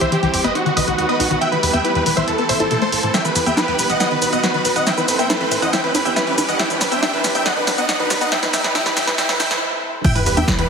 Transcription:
Already playing: E3 G3 C4 G4 C5, riser
0.01 C2 E3 C5 E5, closed hi-hat
0.12 E3 G4, closed hi-hat
0.23 C2 E3 G4, closed hi-hat
0.33 G1 E2 G4, open hi-hat
0.44 G1 B3 B4 D#5, closed hi-hat
0.55 D#3 F#3 B3 D#4 F#4 B4, closed hi-hat
0.66 D#3 F#4, closed hi-hat
0.77 B1 D#3 B4 D#5, open hi-hat
0.87 B1 D#3 F#4, closed hi-hat
0.98 D#2 F#4, closed hi-hat
1.09 B3 B4 D#5, closed hi-hat
1.19 B1 D#4 F#4, open hi-hat
1.30 B1 D#3 F#4, closed hi-hat
1.41 E3 G3 G4 E5 G5, closed hi-hat
1.52 E3 B4, closed hi-hat
1.63 E2 B4, open hi-hat
1.73 E2 B3 E5 G5, closed hi-hat
1.84 E4 B4, closed hi-hat
1.95 E2 E3 B4, closed hi-hat
2.06 E1 E3 B4, open hi-hat
2.17 B1 E3 C5 E5, closed hi-hat
2.28 E2 A3 C4 A4 C5, closed hi-hat
2.38 B3 A4, closed hi-hat
2.49 A1 B2 C5 E5, open hi-hat
2.60 A1 E4 A4, closed hi-hat
2.71 B2 A4, closed hi-hat
2.82 A3 A4 C5, closed hi-hat
2.92 A1 E3 A4, open hi-hat
3.03 A2 E3 A4, closed hi-hat
3.14 E3 G3 B3 G4 B4 E5 G5, snare, closed hi-hat, shaker
3.25 E3 B4, closed hi-hat, shaker
3.36 E2 B4, open hi-hat, shaker
3.46 E2 B3 E5 G5, closed hi-hat, shaker
3.57 E4 B4, snare, closed hi-hat, high conga, shaker
3.68 E2 E3 B4, closed hi-hat
3.79 E1 E3 B4, open hi-hat, shaker
3.89 B1 E3 D#5 F#5, closed hi-hat, shaker
4.00 D#3 F#3 F#4 D#5 F#5, snare, closed hi-hat, shaker
4.11 D#3 B4, closed hi-hat
4.22 B1 D#2 B4, open hi-hat, shaker
4.33 B1 B3 D#5 F#5, closed hi-hat, shaker
4.43 D#4 B4, snare, closed hi-hat, shaker
4.54 D#3 B4, closed hi-hat
4.65 B1 D#3 B4, open hi-hat, shaker
4.76 B1 D#3 D#5 F#5, closed hi-hat, shaker
4.86 E3 A3 C4 A4 C5 E5 G5, snare, closed hi-hat, shaker
4.97 E3 B4, closed hi-hat, shaker
5.08 A1 E2 B4, open hi-hat, shaker
5.19 A1 B3 E5 G5, closed hi-hat, shaker
5.30 E4 B4, snare, closed hi-hat, high conga, shaker
5.41 A1 E3 B4, closed hi-hat
5.51 A2 E3 B4, open hi-hat, shaker
5.62 E2 E3 D#5 F#5, closed hi-hat, shaker
5.73 E3 G3 B3 G4 B4 E5 G5, snare, closed hi-hat, shaker
5.84 E3 B4, closed hi-hat
5.94 E2 B4, open hi-hat, high conga, shaker
6.05 E2 B3 E5 G5, closed hi-hat, shaker
6.16 E4 B4, snare, closed hi-hat, shaker
6.27 E3 B4, closed hi-hat
6.38 E2 E3 B4, open hi-hat, high conga, shaker
6.48 E2 E3 D#5 F#5, closed hi-hat, shaker
6.59 E3 G3 C4 C5 E5 G5, snare, closed hi-hat, shaker
6.70 E3 B4, closed hi-hat, shaker
6.81 C2 E2 B4, snare, open hi-hat, shaker
6.91 C2 B3 E5 G5, closed hi-hat, shaker
7.02 E3 E5 G5, snare, closed hi-hat, high conga, shaker
7.13 C2 E3 B4, closed hi-hat
7.24 G1 E2 B4, snare, open hi-hat, shaker
7.35 G1 B3 E5 G5, closed hi-hat, shaker
7.46 D#3 F#3 B3 F#4 B4 D#5 F#5, snare, closed hi-hat, shaker
7.56 D#3 B4, closed hi-hat
7.67 B1 D#2 B4, snare, open hi-hat, shaker
7.78 B1 B3 D#5 F#5, closed hi-hat, shaker
7.89 D#3 D#5 F#5, snare, closed hi-hat, shaker
8.00 D#3 B4, closed hi-hat
8.10 B1 D#2 B4, snare, open hi-hat, shaker
8.21 B1 B3 D#5 F#5, closed hi-hat, shaker
8.32 E3 G3 G4 E5 G5, snare, closed hi-hat, shaker
8.43 E3 B4, snare, closed hi-hat, shaker
8.53 E2 E3 E5 G5, snare, open hi-hat, shaker
8.64 E2 E3 B4, snare, closed hi-hat, shaker
8.75 E3 E5 G5, snare, closed hi-hat, high conga, shaker
8.86 E2 E3 B4, snare, closed hi-hat, shaker
8.97 E1 E3 E5 G5, snare, open hi-hat, shaker
9.07 B1 E3 B4, snare, closed hi-hat, shaker
9.18 E3 A3 C4 A4 C5 E5 G5, snare, closed hi-hat, shaker
9.29 E3 B4, snare, open hi-hat, shaker
9.40 A1 E3 E5 G5, snare, open hi-hat, high conga, shaker
9.50 A1 E3 B4, snare, closed hi-hat, shaker
10.04 E3 G3 B3 G4 B4 E5 G5, kick, closed hi-hat, crash, sub drop, shaker
10.15 E3 B4, closed hi-hat, shaker
10.26 E2 B4, open hi-hat, shaker
10.37 E2 B3 E5 G5, closed hi-hat, high conga, shaker
10.48 E4 B4, kick, snare, closed hi-hat, shaker
10.58 E2 E3 B4, closed hi-hat

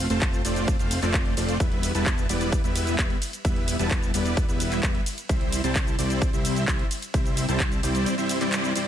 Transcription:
0.10 F1 A3 C4 F4 C5 A5, closed hi-hat, cabasa
0.22 kick, clap, closed hi-hat, ride, cabasa
0.33 closed hi-hat, cabasa
0.45 F1 A3 C4 F4 C5 D5, open hi-hat, ride, cabasa
0.56 closed hi-hat, cabasa
0.68 kick, closed hi-hat, ride, cabasa
0.79 F1 A3 C4 F4 C5 F5, closed hi-hat, cabasa
0.91 open hi-hat, ride, cabasa
1.02 F1 A3 C4 F4 C5 D5, clap, closed hi-hat, cabasa
1.14 kick, clap, closed hi-hat, ride, cabasa
1.26 closed hi-hat
1.37 F1 A3 C4 F4 C5 D5, open hi-hat, ride, cabasa
1.49 closed hi-hat, cabasa
1.60 E4 E5, kick, closed hi-hat, ride, cabasa
1.72 closed hi-hat
1.83 open hi-hat, ride, cabasa
1.95 E1 G3 B3 E4 B4 A5, closed hi-hat, cabasa
2.06 kick, clap, closed hi-hat, ride, cabasa
2.18 closed hi-hat, cabasa
2.29 E1 G3 B3 E4 B4 D5, open hi-hat, ride, cabasa
2.41 closed hi-hat, cabasa
2.52 kick, closed hi-hat, ride, cabasa
2.64 E1 G3 B3 E4 B4 E5, closed hi-hat, cabasa
2.76 open hi-hat, ride, cabasa
2.87 closed hi-hat, cabasa
2.99 G3, kick, clap, closed hi-hat, ride, cabasa
3.10 closed hi-hat
3.22 open hi-hat, ride, cabasa
3.33 closed hi-hat, cabasa
3.45 E1 G3 B3 E4 B4 E5, kick, closed hi-hat, ride, cabasa
3.56 closed hi-hat
3.68 open hi-hat, ride, cabasa
3.79 E1 G3 B3 E4 B4 A5, closed hi-hat, cabasa
3.91 kick, clap, closed hi-hat, ride, cabasa
4.03 closed hi-hat, cabasa
4.14 E1 G3 B3 E4 B4 D5, open hi-hat, ride, cabasa
4.26 closed hi-hat, cabasa
4.37 kick, closed hi-hat, ride, cabasa
4.49 E1 G3 B3 E4 B4 E5, closed hi-hat, cabasa
4.60 open hi-hat, ride, cabasa
4.72 clap, closed hi-hat, cabasa
4.83 E1 G3 B3 E4 B4, kick, clap, closed hi-hat, ride, cabasa
4.95 closed hi-hat
5.06 open hi-hat, ride, cabasa
5.18 closed hi-hat, cabasa
5.29 C2 G3 C4 E4 C5 E5, kick, closed hi-hat, ride, cabasa
5.41 closed hi-hat
5.52 open hi-hat, ride, cabasa
5.64 C2 G3 C4 E4 C5 A5, closed hi-hat, cabasa
5.76 kick, clap, closed hi-hat, ride, cabasa
5.87 closed hi-hat, cabasa
5.99 C2 G3 C4 E4 C5 D5, open hi-hat, ride, cabasa
6.10 closed hi-hat, cabasa
6.22 kick, closed hi-hat, ride, cabasa
6.33 C2 G3 C4 E4 C5 E5, closed hi-hat, cabasa
6.45 open hi-hat, ride, cabasa
6.56 closed hi-hat, cabasa
6.68 G3, kick, clap, closed hi-hat, ride, cabasa
6.79 closed hi-hat
6.91 open hi-hat, ride, cabasa
7.02 closed hi-hat, cabasa
7.14 C2 G3 C4 E4 C5 E5, kick, closed hi-hat, ride, cabasa
7.26 closed hi-hat, cabasa
7.37 open hi-hat, ride, cabasa
7.49 C2 G3 C4 E4 C5 A5, closed hi-hat, cabasa
7.60 kick, clap, closed hi-hat, ride, cabasa
7.72 closed hi-hat, cabasa
7.83 C2 G3 C4 E4 C5 D5, open hi-hat, ride, cabasa
7.95 closed hi-hat, cabasa
8.06 closed hi-hat, ride, cabasa
8.18 G3 C4 E4 C5 E5, closed hi-hat, cabasa
8.29 open hi-hat, ride, cabasa
8.41 G3 C4 E4 C5 D5, clap, closed hi-hat, cabasa
8.53 clap, closed hi-hat, ride, cabasa
8.64 closed hi-hat, cabasa
8.76 G3 C4 E4 C5 D5, open hi-hat, ride, cabasa

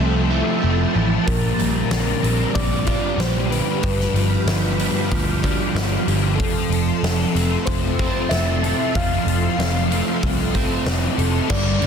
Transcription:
Already playing: F3 A3 C4 A4 C5 E5 G5 A5
0.00 C2 F3 A3
0.31 A3 E4
0.62 F1 A3 C4
0.94 A1 F3 E4
1.26 A#1 A#2 G4 A#4 D5 A#5, kick, open hi-hat
1.58 A#1 G3, open hi-hat
1.91 A#1 D3, snare, open hi-hat
2.23 A#1 G3 C4, open hi-hat
2.53 A#1 D3 G3 D5, kick, open hi-hat
2.84 G3 F4, kick, open hi-hat
3.17 A#1 G3 C4 C5, snare, open hi-hat
3.50 D3 G4 B4, open hi-hat
3.82 G1 G2 F5 B5 D6, kick, open hi-hat
4.00 snare
4.14 G1 F3, open hi-hat
4.46 G1 D3 F3, snare, open hi-hat
4.79 G3 B3, open hi-hat
5.10 D2 F3, kick, open hi-hat
5.43 G3 D4, kick, open hi-hat
5.75 G1 F3 B3, snare, open hi-hat
6.07 G1 D3 G4, open hi-hat
6.36 F3 A4 A5 C6 E6, open hi-hat
6.40 F1 F2, kick
6.70 F1, open hi-hat
7.03 F1 C3 F3, snare, open hi-hat
7.34 F1 A3 C4, open hi-hat
7.66 F1 F3 C5, kick, open hi-hat
7.99 C4, kick, open hi-hat
8.29 F1 E4 E5, snare, open hi-hat
8.62 C3 A4, open hi-hat
8.94 F1 F2 F3 F5 F6, kick, open hi-hat
9.26 F1, open hi-hat
9.58 F1 C3 F3, snare, open hi-hat
9.91 A3 C4, open hi-hat
10.22 C2 F3, kick, open hi-hat
10.54 C4, kick, open hi-hat
10.86 F1 E4, snare, open hi-hat
11.18 F1 C3 A4, open hi-hat
11.48 G1 G2 D3 G3 A#3 D4 F4 D5 G5 A#5, kick, crash
11.53 G3
11.66 D3 G3
11.80 G1 G2 D3 G3 A#3 D4, crash

